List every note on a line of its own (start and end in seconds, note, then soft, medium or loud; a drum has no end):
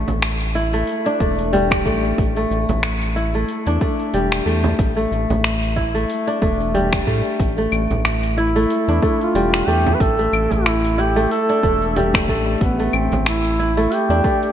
0.00 1.26 G3 medium
0.00 0.73 A3 medium
0.00 0.13 D4 medium
0.08 0.84 A1 medium
0.08 open hi-hat soft
0.08 frame drum medium
0.08 shaker soft
0.22 finger snap medium
0.22 open hi-hat medium
0.22 shaker soft
0.41 open hi-hat soft
0.41 shaker soft
0.55 2.12 E4 medium
0.55 shaker medium
0.73 1.20 A3 medium
0.73 open hi-hat soft
0.73 shaker soft
0.87 open hi-hat medium
0.87 shaker soft
1.06 2.74 D4 medium
1.06 open hi-hat soft
1.06 shaker soft
1.20 1.87 E1 medium
1.20 1.85 A3 medium
1.20 kick loud
1.20 shaker medium
1.39 open hi-hat soft
1.39 shaker soft
1.53 3.87 G3 medium
1.53 open hi-hat medium
1.53 frame drum medium
1.53 shaker soft
1.71 finger snap medium
1.71 kick loud
1.71 open hi-hat soft
1.71 shaker soft
1.85 2.13 A1 loud
1.85 2.37 A3 medium
1.85 kick medium
1.85 shaker medium
2.05 shaker soft
2.18 2.46 A1 medium
2.18 kick loud
2.18 open hi-hat medium
2.18 shaker soft
2.36 3.34 A3 medium
2.36 open hi-hat soft
2.36 shaker soft
2.51 2.66 A1 medium
2.51 shaker medium
2.69 3.45 A1 medium
2.69 open hi-hat soft
2.69 frame drum medium
2.69 shaker soft
2.83 finger snap medium
2.83 open hi-hat medium
2.83 shaker soft
3.02 open hi-hat soft
3.02 shaker soft
3.16 4.73 E4 medium
3.16 shaker medium
3.34 3.81 A3 medium
3.34 open hi-hat soft
3.34 shaker soft
3.48 open hi-hat medium
3.48 shaker soft
3.67 3.79 E2 medium
3.67 5.35 D4 medium
3.67 open hi-hat soft
3.67 shaker soft
3.81 4.45 A3 medium
3.81 kick loud
3.81 shaker medium
3.99 open hi-hat soft
3.99 shaker soft
4.14 4.41 E1 loud
4.14 6.48 G3 medium
4.14 open hi-hat medium
4.14 shaker soft
4.32 finger snap medium
4.32 open hi-hat soft
4.32 shaker soft
4.46 4.74 E2 loud
4.46 4.96 A3 medium
4.46 shaker medium
4.64 frame drum medium
4.64 shaker soft
4.79 5.07 A1 medium
4.79 kick loud
4.79 open hi-hat medium
4.79 shaker soft
4.97 5.94 A3 medium
4.97 open hi-hat soft
4.97 shaker soft
5.11 5.27 A1 medium
5.11 shaker medium
5.30 6.05 A1 medium
5.30 open hi-hat soft
5.30 frame drum medium
5.30 shaker soft
5.44 finger snap medium
5.44 open hi-hat medium
5.44 shaker soft
5.63 open hi-hat soft
5.63 shaker soft
5.76 7.33 E4 medium
5.76 kick medium
5.76 shaker medium
5.95 6.41 A3 medium
5.95 open hi-hat soft
5.95 shaker soft
6.10 open hi-hat medium
6.10 shaker soft
6.27 7.95 D4 medium
6.27 open hi-hat soft
6.27 shaker soft
6.42 7.03 E1 medium
6.42 7.07 A3 medium
6.42 kick loud
6.42 shaker medium
6.60 open hi-hat soft
6.60 shaker soft
6.74 9.08 G3 medium
6.74 open hi-hat medium
6.74 frame drum medium
6.74 shaker soft
6.93 finger snap medium
6.93 kick loud
6.93 open hi-hat soft
6.93 shaker soft
7.07 7.22 A2 medium
7.07 7.58 A3 medium
7.07 kick medium
7.07 shaker medium
7.26 shaker soft
7.40 7.67 A1 medium
7.40 kick loud
7.40 open hi-hat medium
7.40 shaker soft
7.58 8.55 A3 medium
7.58 open hi-hat soft
7.58 shaker soft
7.72 7.87 A1 medium
7.72 claves medium
7.72 shaker medium
7.90 8.66 A1 medium
7.90 open hi-hat soft
7.90 frame drum medium
7.90 shaker soft
8.05 finger snap medium
8.05 open hi-hat medium
8.05 shaker soft
8.23 open hi-hat soft
8.23 shaker soft
8.38 9.94 E4 medium
8.38 9.17 E4 loud
8.38 shaker medium
8.56 9.03 A3 medium
8.56 open hi-hat soft
8.56 shaker soft
8.70 open hi-hat medium
8.70 shaker soft
8.88 9.00 E2 medium
8.88 10.56 D4 medium
8.88 open hi-hat soft
8.88 shaker soft
9.02 9.67 A3 medium
9.02 kick loud
9.02 shaker medium
9.21 9.69 F4 loud
9.21 open hi-hat soft
9.21 shaker soft
9.35 9.63 E1 medium
9.35 11.69 G3 medium
9.35 open hi-hat medium
9.35 shaker soft
9.54 finger snap medium
9.54 open hi-hat soft
9.54 shaker soft
9.67 9.96 E2 loud
9.67 10.19 A3 medium
9.67 9.95 G4 loud
9.67 shaker medium
9.86 frame drum medium
9.86 shaker soft
9.94 10.02 B4 medium
10.00 10.28 A1 medium
10.00 10.54 A4 loud
10.00 kick loud
10.00 open hi-hat medium
10.00 shaker soft
10.19 11.16 A3 medium
10.19 open hi-hat soft
10.19 shaker soft
10.33 10.48 A1 medium
10.33 claves medium
10.33 shaker medium
10.51 11.27 A1 medium
10.51 11.01 E4 loud
10.51 open hi-hat soft
10.51 frame drum medium
10.51 shaker soft
10.66 finger snap medium
10.66 open hi-hat medium
10.66 shaker soft
10.85 open hi-hat soft
10.85 shaker soft
10.98 12.55 E4 medium
10.98 11.31 G4 medium
10.98 shaker medium
11.16 11.63 A3 medium
11.16 open hi-hat soft
11.16 shaker soft
11.31 11.98 A4 loud
11.31 open hi-hat medium
11.31 shaker soft
11.49 13.17 D4 medium
11.49 open hi-hat soft
11.49 shaker soft
11.63 12.30 E1 medium
11.63 12.29 A3 medium
11.63 kick medium
11.63 shaker medium
11.82 open hi-hat soft
11.82 shaker soft
11.96 14.31 G3 medium
11.96 12.35 A3 medium
11.96 open hi-hat medium
11.96 frame drum medium
11.96 shaker soft
12.14 finger snap medium
12.14 kick loud
12.14 open hi-hat soft
12.14 claves medium
12.14 shaker soft
12.28 12.56 A1 medium
12.28 12.79 A3 medium
12.28 kick medium
12.28 shaker medium
12.47 shaker soft
12.61 12.89 A1 medium
12.61 12.96 B3 medium
12.61 kick loud
12.61 open hi-hat medium
12.61 shaker soft
12.79 13.77 A3 medium
12.79 open hi-hat soft
12.79 shaker soft
12.93 13.09 A1 medium
12.93 13.27 C4 medium
12.93 claves medium
12.93 shaker medium
13.11 13.88 A1 medium
13.11 open hi-hat soft
13.11 frame drum medium
13.11 shaker soft
13.26 13.95 E4 loud
13.26 finger snap medium
13.26 open hi-hat medium
13.26 shaker soft
13.45 open hi-hat soft
13.45 shaker soft
13.59 14.52 E4 medium
13.59 shaker medium
13.77 14.24 A3 medium
13.77 open hi-hat soft
13.77 shaker soft
13.92 14.52 G4 loud
13.92 open hi-hat medium
13.92 shaker soft
14.09 14.22 E2 medium
14.09 14.52 D4 medium
14.09 open hi-hat soft
14.09 shaker soft
14.24 14.52 A3 medium
14.24 kick medium
14.24 shaker medium
14.43 open hi-hat soft
14.43 shaker soft